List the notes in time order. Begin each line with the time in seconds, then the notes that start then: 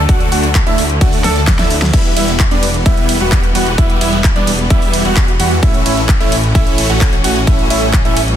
Already playing: D3 F#3 A3
0.09 D2 A3 D4 F#4, kick, closed hi-hat
0.20 closed hi-hat
0.32 D2 A3 D4 F#4, open hi-hat
0.43 closed hi-hat
0.55 kick, clap, closed hi-hat
0.67 D2 A3 D4 E4, closed hi-hat
0.78 open hi-hat
0.90 closed hi-hat
1.01 D2 A3 D4 F#4, kick, closed hi-hat
1.13 open hi-hat
1.24 D2 A3 D4 A4, snare, open hi-hat
1.36 closed hi-hat
1.47 kick, snare, clap, closed hi-hat
1.59 D2 A3 D4 E4, snare, closed hi-hat
1.70 open hi-hat
1.82 snare
1.93 E1 E3 G3 B3 E4, kick, closed hi-hat, crash
2.05 closed hi-hat
2.17 E1 G3 B3 E4, open hi-hat, ride
2.28 closed hi-hat
2.40 kick, clap, closed hi-hat
2.51 E1 G3 B3 D4, closed hi-hat
2.63 open hi-hat, ride
2.74 closed hi-hat
2.86 E1 G3 B3 E4, kick, closed hi-hat
2.97 closed hi-hat
3.09 open hi-hat, ride
3.20 E1 G3 B3 F#4, closed hi-hat
3.32 kick, clap, closed hi-hat
3.44 closed hi-hat
3.55 E1 G3 B3 F#4, open hi-hat, ride
3.67 closed hi-hat
3.78 E1 G3 B3 E4, kick, closed hi-hat
3.90 closed hi-hat
4.01 E1 G3 B3 E4, open hi-hat, ride
4.13 closed hi-hat
4.24 kick, clap, closed hi-hat
4.36 E1 G3 B3 D4, closed hi-hat
4.47 open hi-hat, ride
4.59 closed hi-hat
4.70 E1 G3 B3 E4, kick, closed hi-hat
4.82 open hi-hat
4.93 open hi-hat, ride
5.05 E1 G3 B3 F#4, closed hi-hat
5.17 kick, clap, closed hi-hat
5.28 closed hi-hat
5.40 E2 G3 B3 F#4, open hi-hat, ride
5.51 closed hi-hat
5.63 A1 A3 C#4 E4, kick, closed hi-hat
5.74 closed hi-hat
5.86 A1 A3 C#4 E4, open hi-hat, ride
5.97 closed hi-hat
6.09 kick, clap, closed hi-hat
6.20 A1 A3 C#4 E4, closed hi-hat
6.32 open hi-hat, ride
6.44 closed hi-hat
6.55 A1 A3 C#4 E4, kick, closed hi-hat
6.67 closed hi-hat
6.78 open hi-hat, ride
6.90 A1 A3 C#4 F#4, closed hi-hat
7.01 kick, clap, closed hi-hat
7.13 closed hi-hat
7.24 A1 A3 C#4 F#4, open hi-hat, ride
7.36 closed hi-hat
7.47 A1 G3 A3 C#4 E4, kick, closed hi-hat
7.59 closed hi-hat
7.70 A1 A3 C#4 E4, open hi-hat, ride
7.82 closed hi-hat
7.93 kick, clap, closed hi-hat
8.05 A1 A3 C#4 E4, closed hi-hat
8.17 open hi-hat, ride
8.28 closed hi-hat